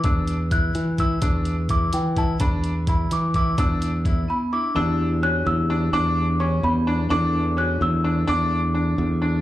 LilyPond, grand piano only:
\new Staff \with { instrumentName = "Grand piano" } { \time 5/8 \key e \dorian \tempo 4 = 128 d'4 e'4 e'8 | d'4 e'4 e'8 | d'4 e'4 e'8 | d'4 e'4 e'8 |
d'4 cis'4 d'8 | d'4 cis'4 d'8 | d'4 cis'4 d'8 | d'4 d'4 d'8 | }